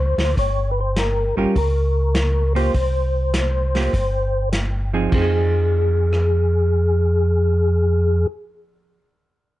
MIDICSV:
0, 0, Header, 1, 5, 480
1, 0, Start_track
1, 0, Key_signature, -4, "minor"
1, 0, Tempo, 593472
1, 306, Time_signature, 4, 2, 24, 8
1, 7764, End_track
2, 0, Start_track
2, 0, Title_t, "Tonewheel organ"
2, 0, Program_c, 0, 16
2, 0, Note_on_c, 0, 72, 90
2, 285, Note_off_c, 0, 72, 0
2, 314, Note_on_c, 0, 73, 86
2, 568, Note_off_c, 0, 73, 0
2, 577, Note_on_c, 0, 71, 60
2, 644, Note_off_c, 0, 71, 0
2, 652, Note_on_c, 0, 72, 90
2, 785, Note_off_c, 0, 72, 0
2, 797, Note_on_c, 0, 70, 89
2, 1097, Note_off_c, 0, 70, 0
2, 1123, Note_on_c, 0, 67, 68
2, 1275, Note_off_c, 0, 67, 0
2, 1277, Note_on_c, 0, 70, 85
2, 2047, Note_off_c, 0, 70, 0
2, 2073, Note_on_c, 0, 72, 90
2, 3633, Note_off_c, 0, 72, 0
2, 4163, Note_on_c, 0, 68, 73
2, 6691, Note_off_c, 0, 68, 0
2, 7764, End_track
3, 0, Start_track
3, 0, Title_t, "Hollow-body jazz guitar"
3, 0, Program_c, 1, 26
3, 1108, Note_on_c, 1, 55, 56
3, 1112, Note_on_c, 1, 61, 55
3, 1116, Note_on_c, 1, 65, 62
3, 1117, Note_on_c, 1, 70, 67
3, 1247, Note_off_c, 1, 55, 0
3, 1249, Note_off_c, 1, 61, 0
3, 1251, Note_off_c, 1, 65, 0
3, 1252, Note_off_c, 1, 70, 0
3, 2064, Note_on_c, 1, 58, 60
3, 2072, Note_on_c, 1, 65, 59
3, 2073, Note_on_c, 1, 67, 69
3, 2205, Note_off_c, 1, 58, 0
3, 2209, Note_off_c, 1, 65, 0
3, 2210, Note_off_c, 1, 67, 0
3, 3032, Note_on_c, 1, 58, 39
3, 3039, Note_on_c, 1, 65, 45
3, 3045, Note_on_c, 1, 67, 53
3, 3170, Note_off_c, 1, 58, 0
3, 3173, Note_off_c, 1, 65, 0
3, 3176, Note_off_c, 1, 67, 0
3, 3991, Note_on_c, 1, 53, 64
3, 3995, Note_on_c, 1, 60, 60
3, 3998, Note_on_c, 1, 63, 55
3, 3998, Note_on_c, 1, 68, 62
3, 4111, Note_off_c, 1, 53, 0
3, 4121, Note_on_c, 1, 53, 55
3, 4131, Note_off_c, 1, 60, 0
3, 4133, Note_off_c, 1, 63, 0
3, 4133, Note_off_c, 1, 68, 0
3, 4154, Note_on_c, 1, 60, 57
3, 4188, Note_on_c, 1, 63, 50
3, 4217, Note_on_c, 1, 68, 59
3, 7268, Note_off_c, 1, 53, 0
3, 7285, Note_off_c, 1, 60, 0
3, 7302, Note_off_c, 1, 63, 0
3, 7316, Note_off_c, 1, 68, 0
3, 7764, End_track
4, 0, Start_track
4, 0, Title_t, "Tonewheel organ"
4, 0, Program_c, 2, 16
4, 0, Note_on_c, 2, 37, 86
4, 118, Note_off_c, 2, 37, 0
4, 139, Note_on_c, 2, 38, 65
4, 287, Note_off_c, 2, 38, 0
4, 300, Note_on_c, 2, 31, 84
4, 1078, Note_off_c, 2, 31, 0
4, 1107, Note_on_c, 2, 31, 33
4, 1185, Note_off_c, 2, 31, 0
4, 1260, Note_on_c, 2, 37, 86
4, 2190, Note_off_c, 2, 37, 0
4, 2216, Note_on_c, 2, 36, 71
4, 3148, Note_off_c, 2, 36, 0
4, 3179, Note_on_c, 2, 31, 79
4, 4110, Note_off_c, 2, 31, 0
4, 4142, Note_on_c, 2, 41, 77
4, 6680, Note_off_c, 2, 41, 0
4, 7764, End_track
5, 0, Start_track
5, 0, Title_t, "Drums"
5, 148, Note_on_c, 9, 38, 52
5, 148, Note_on_c, 9, 46, 37
5, 229, Note_off_c, 9, 38, 0
5, 229, Note_off_c, 9, 46, 0
5, 301, Note_on_c, 9, 36, 26
5, 303, Note_on_c, 9, 46, 34
5, 382, Note_off_c, 9, 36, 0
5, 384, Note_off_c, 9, 46, 0
5, 779, Note_on_c, 9, 38, 59
5, 779, Note_on_c, 9, 42, 48
5, 860, Note_off_c, 9, 38, 0
5, 860, Note_off_c, 9, 42, 0
5, 1259, Note_on_c, 9, 36, 29
5, 1261, Note_on_c, 9, 46, 38
5, 1340, Note_off_c, 9, 36, 0
5, 1342, Note_off_c, 9, 46, 0
5, 1736, Note_on_c, 9, 38, 69
5, 1736, Note_on_c, 9, 42, 51
5, 1817, Note_off_c, 9, 38, 0
5, 1817, Note_off_c, 9, 42, 0
5, 2072, Note_on_c, 9, 46, 38
5, 2152, Note_off_c, 9, 46, 0
5, 2219, Note_on_c, 9, 36, 27
5, 2219, Note_on_c, 9, 46, 37
5, 2299, Note_off_c, 9, 46, 0
5, 2300, Note_off_c, 9, 36, 0
5, 2698, Note_on_c, 9, 38, 64
5, 2698, Note_on_c, 9, 42, 48
5, 2779, Note_off_c, 9, 38, 0
5, 2779, Note_off_c, 9, 42, 0
5, 3032, Note_on_c, 9, 38, 39
5, 3032, Note_on_c, 9, 46, 32
5, 3113, Note_off_c, 9, 38, 0
5, 3113, Note_off_c, 9, 46, 0
5, 3181, Note_on_c, 9, 36, 28
5, 3184, Note_on_c, 9, 46, 35
5, 3262, Note_off_c, 9, 36, 0
5, 3265, Note_off_c, 9, 46, 0
5, 3660, Note_on_c, 9, 38, 59
5, 3660, Note_on_c, 9, 42, 51
5, 3741, Note_off_c, 9, 38, 0
5, 3741, Note_off_c, 9, 42, 0
5, 4142, Note_on_c, 9, 36, 47
5, 4142, Note_on_c, 9, 49, 44
5, 4223, Note_off_c, 9, 36, 0
5, 4223, Note_off_c, 9, 49, 0
5, 4955, Note_on_c, 9, 37, 46
5, 5036, Note_off_c, 9, 37, 0
5, 7764, End_track
0, 0, End_of_file